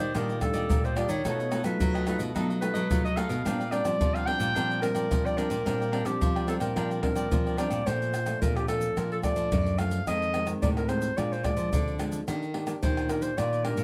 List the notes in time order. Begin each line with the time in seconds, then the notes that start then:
Already playing: A#2 C5
0.00 D#3 G4 D5 D#5
0.14 A#2 D#3 G3 D4 F4 G4 A#4 D5 D#5, pandeiro, tamborim, shaker, surdo
0.29 G4 D5 D#5, pandeiro, shaker
0.41 G3 D4 F4 A4, muted cavaquinho stroke, pandeiro, tamborim, shaker, surdo
0.54 A#2 G4 D5 D#5, pandeiro, shaker
0.69 A#2, pandeiro, shaker, surdo
0.84 G4 C5 D5 D#5, pandeiro, shaker
0.96 G3 D4 F4 G4 D5 D#5, pandeiro, tamborim, shaker
1.09 D#3 G4 C#5 D5 D#5, pandeiro, shaker
1.25 B2 A3 D#4 F4 A4 B4 D#5, pandeiro, tamborim, shaker, surdo
1.39 A4 B4 D#5, pandeiro, shaker
1.51 A3 D#4 F4 A4 B4 D#5, pandeiro, tamborim, shaker
1.64 F#3 A3 D#4 F4 B4, muted cavaquinho stroke, pandeiro, tamborim, shaker
1.80 F#3, pandeiro, shaker, surdo
1.94 A4 B4 D#5, pandeiro, tamborim, shaker
2.06 A3 D#4 F4 A4 B4 D#5, pandeiro, tamborim, shaker
2.19 B2 A4 B4 D#5, pandeiro, shaker
2.35 B2 F#3 A3 D#4 F4 A4 B4 D#5, pandeiro, tamborim, shaker, surdo
2.49 A4 B4 D#5, pandeiro, shaker
2.61 A3 D#4 F4 B4, muted cavaquinho stroke, pandeiro, tamborim, shaker
2.74 F#3 A4 B4 D#5, pandeiro, shaker
2.90 F#3 A3 D#4 F4, pandeiro, shaker, surdo
3.04 A4 B4 D#5, pandeiro, shaker
3.16 A3 D#4 F4 A4 B4 D#5 F5, pandeiro, tamborim, shaker
3.29 B2 A4 B4 D#5, pandeiro, shaker
3.45 A#2 G3 C4 D4 A#4 D5 G5, pandeiro, tamborim, shaker, surdo
3.60 A#4 D5 G5, pandeiro, shaker
3.71 G3 C4 D4 A#4 D5 G5, pandeiro, tamborim, shaker
3.84 F3 G3 C4 D4, muted cavaquinho stroke, pandeiro, tamborim, shaker
4.00 F3, pandeiro, shaker, surdo
4.14 A#4 D5 F5 G5, pandeiro, tamborim, shaker
4.26 G3 C4 D4 A#4 D5 G5, pandeiro, tamborim
4.39 A#2 A#4 D5 G5, pandeiro, shaker
4.55 A#2 F3 G3 C4 D4 A#4 D5 G5, pandeiro, tamborim, shaker, surdo
4.69 A#4 D5 G5, pandeiro, shaker
4.82 G3 C4 D4 A#4, muted cavaquinho stroke, pandeiro, tamborim, shaker
4.94 F3 A#4 D5 G5, pandeiro, shaker
5.10 F3 G3 C4 D4, pandeiro, shaker, surdo
5.25 A#4 D5 G5, pandeiro, shaker
5.37 G3 C4 D4 A#4 D5 G5, pandeiro, tamborim, shaker
5.50 A#2 A#4 D5 G5, pandeiro, shaker
5.65 A#2 G3 C4 D4 A#4 D5 G5, pandeiro, tamborim, shaker, surdo
5.80 A#4 D5 G5, pandeiro, shaker
5.92 G3 C4 D4 A#4 D5 G5, pandeiro, tamborim
6.05 F3 G3 C4 D4 G4, muted cavaquinho stroke, pandeiro, tamborim, shaker
6.21 F3, pandeiro, shaker, surdo
6.36 A#4 D5 G5, pandeiro, tamborim, shaker
6.47 G3 C4 D4 A4 A#4 D5 G5, pandeiro, tamborim, shaker
6.60 A#2 A#4 D5 G5, pandeiro, shaker
6.76 A#2 F3 D4 A#4 D5 G5, pandeiro, tamborim, shaker, surdo
6.90 D5 G5, pandeiro, shaker
7.03 G3 C4 D4 A#4, muted cavaquinho stroke, pandeiro, tamborim, surdo
7.15 F3 A#4 D5 G5, pandeiro, shaker
7.31 F3 G3 C4 D4, pandeiro, shaker, surdo
7.46 A#4 D5 G5, pandeiro, shaker
7.57 G3 C4 D4 A#4 D5 G5, pandeiro, tamborim, shaker
7.70 A#2 A#4 D5 G5, pandeiro, shaker
7.86 A#2 F3 A3 D4 C5, pandeiro, tamborim, shaker, surdo
8.02 pandeiro, shaker
8.14 pandeiro, tamborim, shaker
8.26 F3 A3 D4, pandeiro, tamborim, shaker
8.42 F2 A#2 A#4, pandeiro, shaker, surdo
8.56 G4, pandeiro, tamborim, shaker
8.68 F3 A3 D4 A4, pandeiro, tamborim, shaker
8.81 pandeiro, shaker
8.97 A#2 F3 A#4, pandeiro, tamborim, shaker, surdo
9.12 A4, pandeiro, shaker
9.23 F3 A3 D4 D5, pandeiro, tamborim, shaker, surdo
9.36 F3, pandeiro, shaker
9.52 F#2, pandeiro, shaker, surdo
9.66 pandeiro, shaker
9.78 F3 A3 D4 F5, pandeiro, tamborim, shaker
9.91 pandeiro, shaker
10.07 F2 D#3 G#3 C4 D#5, pandeiro, tamborim, shaker, surdo
10.22 pandeiro, shaker
10.33 D#3 G#3 C4, pandeiro, tamborim, shaker
10.45 D#3 G#3 C4, pandeiro, tamborim, shaker
10.62 A2 C3 D5, pandeiro, shaker, surdo
10.77 A#4, pandeiro, tamborim, shaker
10.88 D#3 G#3 C4 C5, pandeiro, tamborim, shaker
11.02 pandeiro, shaker
11.17 A#2 F3 G#3 D4 D5, pandeiro, tamborim, shaker, surdo
11.32 C5, pandeiro, shaker
11.43 F3 G#3 D4 D5, pandeiro, tamborim, shaker, surdo
11.57 F3, pandeiro, shaker
11.73 F2 D3, pandeiro, shaker, surdo
11.88 pandeiro, shaker
11.99 F3 G#3 D4, pandeiro, tamborim, shaker
12.12 pandeiro, shaker
12.28 D#3 A#3 D4 G4, pandeiro, tamborim, shaker, surdo
12.42 pandeiro, shaker
12.54 A#3 D4 G4, pandeiro, tamborim
12.67 A#3 D4 G4, pandeiro, tamborim, shaker
12.83 A#2 D#3 C5, pandeiro, shaker, surdo
12.97 pandeiro, tamborim, shaker
13.09 A#3 D4 G4 A#4, pandeiro, tamborim, shaker
13.22 C5, pandeiro, shaker
13.38 A#2 D#3 D5, pandeiro, tamborim, shaker, surdo
13.53 pandeiro, shaker
13.65 A#3 D4 G4 A#4, pandeiro, tamborim
13.77 A#2, pandeiro, shaker